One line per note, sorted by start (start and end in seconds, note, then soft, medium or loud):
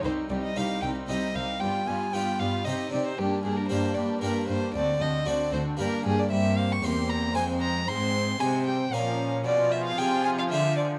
0.03 0.28 C2 soft
0.03 0.12 C2 soft
0.03 0.30 C4 soft
0.03 0.30 D#4 soft
0.03 0.29 G4 soft
0.03 0.13 C5 medium
0.29 0.54 C2 soft
0.29 0.38 C2 soft
0.29 0.56 C4 soft
0.29 0.56 D#4 soft
0.29 0.56 G4 soft
0.29 0.35 D5 medium
0.43 0.59 D#5 medium
0.56 0.80 C2 soft
0.56 0.65 C2 soft
0.56 0.94 C4 soft
0.56 0.82 C4 soft
0.56 0.94 D#4 soft
0.56 0.83 D#4 soft
0.56 0.94 G4 soft
0.56 0.82 G4 soft
0.56 0.81 F5 medium
0.82 1.06 C2 soft
0.82 0.91 C2 soft
0.82 1.08 C4 soft
0.82 1.09 D#4 soft
0.82 1.08 G4 soft
0.82 0.90 G5 medium
1.08 1.32 C2 soft
1.08 1.17 C2 soft
1.08 1.46 C4 soft
1.08 1.34 C4 soft
1.08 1.47 D#4 soft
1.08 1.34 D#4 soft
1.08 1.47 G4 soft
1.08 1.35 G4 soft
1.08 1.37 D#5 medium
1.34 1.58 C2 soft
1.34 1.44 C2 soft
1.34 1.61 C4 soft
1.34 1.61 D#4 soft
1.34 1.60 G4 soft
1.34 1.62 F5 medium
1.60 1.84 G2 soft
1.60 1.70 G2 soft
1.60 1.86 B3 soft
1.60 1.86 F4 soft
1.60 1.86 G4 medium
1.60 1.89 G5 medium
1.86 2.11 G2 soft
1.86 1.96 G2 soft
1.86 2.13 B3 soft
1.86 2.13 F4 soft
1.86 2.12 G4 soft
1.86 2.14 G#5 medium
2.13 2.37 G2 soft
2.13 2.22 G2 soft
2.13 2.51 B3 soft
2.13 2.39 B3 soft
2.13 2.52 F4 soft
2.13 2.39 F4 soft
2.13 2.39 G4 soft
2.13 2.52 G4 soft
2.13 2.41 G5 medium
2.39 2.63 G2 soft
2.39 2.48 G2 soft
2.39 2.66 B3 soft
2.39 2.66 F4 soft
2.39 2.65 G4 soft
2.39 2.66 F5 medium
2.64 2.89 C3 soft
2.64 2.75 C3 soft
2.64 3.14 C4 soft
2.64 2.91 C4 soft
2.64 2.91 D#4 soft
2.64 3.14 D#4 soft
2.64 2.91 G4 soft
2.64 3.15 G4 soft
2.64 2.91 D#5 medium
2.91 3.15 C3 soft
2.91 3.01 C3 soft
2.91 3.18 C4 soft
2.91 3.18 D#4 soft
2.91 3.18 G4 soft
2.91 3.05 D5 medium
3.07 3.20 C5 medium
3.17 3.41 G2 soft
3.17 3.27 G2 soft
3.17 3.43 A#3 soft
3.17 3.43 D4 soft
3.17 3.43 G4 medium
3.17 3.43 G4 soft
3.43 3.67 G2 soft
3.43 3.53 G2 soft
3.43 3.69 A#3 soft
3.43 3.69 D4 soft
3.43 3.70 G4 soft
3.43 3.58 G#4 medium
3.57 3.68 A#4 medium
3.69 3.93 G2 soft
3.69 3.79 G2 medium
3.69 4.07 A#3 soft
3.69 3.95 A#3 soft
3.69 4.07 D4 soft
3.69 3.95 D4 soft
3.69 4.08 G4 soft
3.69 3.95 G4 soft
3.69 3.96 C5 medium
3.95 4.19 G2 soft
3.95 4.05 G2 soft
3.95 4.21 A#3 soft
3.95 4.21 D4 soft
3.95 4.21 G4 soft
3.95 4.21 D5 medium
4.21 4.45 G2 soft
4.21 4.31 G2 soft
4.21 4.59 A#3 soft
4.21 4.48 A#3 soft
4.21 4.47 D4 soft
4.21 4.60 D4 soft
4.21 4.48 G4 soft
4.21 4.60 G4 soft
4.21 4.47 A#4 medium
4.48 4.71 G2 soft
4.48 4.57 G2 medium
4.48 4.74 A#3 soft
4.48 4.73 D4 soft
4.48 4.74 G4 soft
4.48 4.74 C5 medium
4.74 4.98 D2 soft
4.74 4.82 D2 medium
4.74 5.00 C4 soft
4.74 4.98 D4 medium
4.74 4.98 F#4 medium
4.74 5.03 D5 medium
4.99 5.24 D2 soft
4.99 5.09 D2 soft
4.99 5.25 C4 soft
4.99 5.24 D4 soft
4.99 5.25 F#4 soft
4.99 5.28 D#5 medium
5.25 5.50 D2 soft
5.25 5.34 D2 medium
5.25 5.64 C4 soft
5.25 5.51 C4 soft
5.25 5.50 D4 soft
5.25 5.64 D4 soft
5.25 5.50 F#4 soft
5.25 5.64 F#4 soft
5.25 5.53 D5 medium
5.51 5.76 D2 soft
5.51 5.61 D2 medium
5.51 5.78 C4 soft
5.51 5.76 D4 soft
5.51 5.78 F#4 soft
5.51 5.61 C5 medium
5.77 6.01 G2 soft
5.77 5.86 G2 medium
5.77 6.26 A#3 soft
5.77 6.04 A#3 soft
5.77 6.03 D4 soft
5.77 6.27 D4 soft
5.77 6.03 G4 soft
5.77 6.27 G4 soft
5.77 6.05 A#4 medium
6.03 6.28 G2 soft
6.03 6.13 G2 medium
6.03 6.31 A#3 soft
6.03 6.30 D4 soft
6.03 6.29 G4 soft
6.03 6.21 G#4 medium
6.19 6.31 D5 medium
6.30 6.79 G2 soft
6.30 6.80 G2 medium
6.30 6.80 A#3 medium
6.30 6.79 C4 medium
6.30 6.79 G4 medium
6.30 6.59 E5 medium
6.58 6.74 F5 medium
6.72 6.86 C#6 medium
6.82 7.31 E2 soft
6.82 7.34 E2 medium
6.82 7.20 A#3 soft
6.82 7.35 A#3 medium
6.82 7.33 C4 medium
6.82 7.21 C4 soft
6.82 7.34 G4 soft
6.82 7.21 C5 soft
6.82 7.11 C6 medium
7.10 7.35 A#5 medium
7.34 7.83 F2 soft
7.34 7.88 F2 medium
7.34 7.83 G#3 soft
7.34 7.87 G#3 medium
7.34 7.87 C4 soft
7.34 7.84 C4 soft
7.34 7.86 C5 medium
7.34 7.84 C5 soft
7.34 7.44 G#5 medium
7.61 7.89 A#5 medium
7.87 8.40 G#2 medium
7.87 8.36 G#2 soft
7.87 8.39 G#3 medium
7.87 8.40 C4 medium
7.87 8.39 C5 medium
7.87 8.42 C6 medium
8.40 8.89 C3 medium
8.40 8.92 C3 medium
8.40 8.78 G#3 soft
8.40 8.66 G#3 medium
8.40 8.78 C4 soft
8.40 8.92 C4 medium
8.40 8.92 C5 medium
8.40 8.78 C5 soft
8.40 8.66 G#5 medium
8.67 8.75 G3 medium
8.67 8.95 G5 medium
8.92 9.44 A#2 medium
8.92 9.41 A#2 medium
8.92 9.45 F3 medium
8.92 9.45 C#4 medium
8.92 9.42 C#4 soft
8.92 9.45 A#4 medium
8.92 9.42 A#4 soft
8.92 9.32 F5 medium
9.45 9.94 B2 soft
9.45 9.98 B2 medium
9.45 10.99 F3 medium
9.45 10.99 F4 medium
9.45 10.99 G#4 medium
9.45 9.73 D5 medium
9.72 9.85 E5 medium
9.86 10.00 F5 medium
9.97 10.50 C3 medium
9.97 10.47 C3 medium
9.97 10.36 F4 soft
9.97 10.36 G#4 soft
9.97 10.25 G5 medium
10.25 10.30 G#5 medium
10.39 10.44 F5 medium
10.50 10.99 D3 medium
10.50 10.99 D3 soft
10.50 10.90 F4 soft
10.50 10.90 G#4 soft
10.50 10.76 E5 medium
10.77 10.85 D5 medium